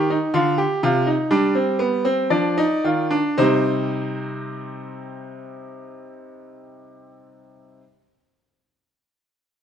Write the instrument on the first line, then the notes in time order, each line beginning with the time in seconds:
grand piano
Already playing: D#3
0.10 D#4
0.34 D3 F4
0.58 G4
0.83 C3 F4
1.07 D#4
1.31 G3 D4
1.55 C4
1.79 B3
2.05 C4
2.30 F3 D4 D5
2.58 D#4
2.84 D#3 F4
3.11 D4
3.38 C3 G3 C4 D#4 C5